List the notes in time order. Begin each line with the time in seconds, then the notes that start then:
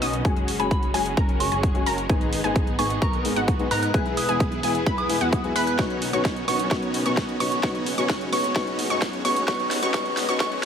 Already playing: D#3 B3 C#4
0.02 B1 B3 C#4 D#4 F#4 D#5 D#6, open hi-hat
0.13 closed hi-hat
0.24 F#1 F#3 G#3 C#4 F#4 G#4 G#5, kick, closed hi-hat
0.36 closed hi-hat
0.48 open hi-hat
0.59 F#1 G#3 C#4 F#4 G#4 G#5 B5, closed hi-hat
0.71 B5, kick, closed hi-hat
0.83 closed hi-hat
0.93 F#1 G#3 C#4 F#4 G#4 G#5, open hi-hat
1.06 closed hi-hat
1.17 F#1 C#4 F#4 A#4 A#5, kick, closed hi-hat
1.29 closed hi-hat
1.40 G#3 C#4 F#4 G#4 C#6, open hi-hat
1.52 F#1 C#4 F#4 G#4 G#5, closed hi-hat
1.63 kick, closed hi-hat
1.74 G#3 C#4 F#4 G#4, closed hi-hat
1.86 F#1 C#4 F#4 A#4 A#5, open hi-hat
1.98 closed hi-hat
2.09 G#1 G#2 G#3 B3 D#4 G#4 G#5, kick, closed hi-hat
2.21 closed hi-hat
2.33 open hi-hat
2.44 G#1 G#2 G#3 B3 D#4 G#4 G#5, closed hi-hat
2.56 kick, closed hi-hat
2.67 closed hi-hat
2.78 G#1 G#2 G#3 B3 D#4 G#4 G#5 C#6, open hi-hat
2.90 closed hi-hat
3.02 G#1 B3 D#4 A#4 A#5 C#6, kick, closed hi-hat
3.13 closed hi-hat
3.24 G#2 G#3 B3 D#4 G#4, open hi-hat
3.36 G#1 B3 D#4 F#4 F#5, closed hi-hat
3.48 kick, closed hi-hat
3.59 G#2 G#3 B3 D#4 G#4, closed hi-hat
3.71 G#2 B3 D#4 A#4 A#5 F#6, open hi-hat
3.83 F#6, closed hi-hat
3.94 E1 E3 G#3 B3 E4 G#4 B4 G#5, kick, closed hi-hat
4.06 closed hi-hat
4.17 D#6, open hi-hat
4.28 E1 G#3 B3 E4 G#4 G#5, closed hi-hat
4.40 kick, closed hi-hat
4.52 closed hi-hat
4.63 E1 G#3 B3 E4 G#4 G#5, open hi-hat
4.75 closed hi-hat
4.86 E1 B3 E4 B4 B5, kick, closed hi-hat
4.98 D#6, closed hi-hat
5.09 G#3 B3 E4 G#4, open hi-hat
5.21 E2 B3 E4 F#4 F#5, closed hi-hat
5.33 kick, closed hi-hat
5.44 G#3 B3 E4 G#4, closed hi-hat
5.56 E2 B3 E4 B4 B5 F#6, open hi-hat
5.67 F#6, closed hi-hat
5.78 B1 B2 D#3 B3 C#4 D#4 F#4 C#5 C#6, kick, snare, closed hi-hat, riser
5.90 closed hi-hat
6.02 open hi-hat
6.13 B1 B2 B3 C#4 D#4 F#4 C#5 C#6, closed hi-hat
6.25 kick, snare, closed hi-hat
6.36 closed hi-hat
6.47 B1 B2 B3 C#4 D#4 F#4 C#5 C#6, open hi-hat
6.59 closed hi-hat
6.70 B1 B2 B3 C#4 D#4 F#4 C#5 C#6, kick, snare, closed hi-hat
6.83 closed hi-hat
6.94 open hi-hat
7.05 B1 B2 B3 C#4 D#4 F#4 C#5 C#6, closed hi-hat
7.17 kick, snare, closed hi-hat
7.29 closed hi-hat
7.40 B1 B2 B3 C#4 D#4 F#4 C#5 C#6, open hi-hat
7.52 closed hi-hat
7.63 F#1 B2 F#3 G#3 B3 C#4 D#4 F#4 C#5 C#6, kick, snare, closed hi-hat
7.75 closed hi-hat
7.86 open hi-hat
7.97 F#1 B2 B3 C#4 D#4 F#4 C#5 C#6, closed hi-hat
8.10 kick, snare, closed hi-hat
8.21 closed hi-hat
8.32 F#1 B2 B3 C#4 D#4 F#4 C#5 C#6, open hi-hat
8.44 closed hi-hat
8.55 F#1 B2 B3 C#4 D#4 F#4 C#5 C#6, kick, snare, closed hi-hat
8.67 closed hi-hat
8.79 open hi-hat
8.90 F#2 B2 B3 C#4 D#4 F#4 C#5 C#6, closed hi-hat
9.02 kick, snare, closed hi-hat
9.13 closed hi-hat
9.24 F#1 B2 B3 C#4 D#4 F#4 C#5 C#6, open hi-hat
9.36 closed hi-hat
9.47 G#1 B2 B3 C#4 D#4 F#4 C#5 C#6, kick, snare, closed hi-hat
9.60 closed hi-hat
9.71 snare, open hi-hat
9.82 G#1 B2 B3 C#4 D#4 F#4 C#5 C#6, closed hi-hat
9.93 G#1 B2 B3 C#4 D#4 F#4 C#5 C#6, kick, snare, closed hi-hat
10.06 closed hi-hat
10.17 snare, open hi-hat
10.28 G#1 B2 B3 C#4 D#4 F#4 C#5 C#6, closed hi-hat
10.40 G#1 B2 B3 C#4 D#4 F#4 C#5 C#6, kick, snare, closed hi-hat
10.52 closed hi-hat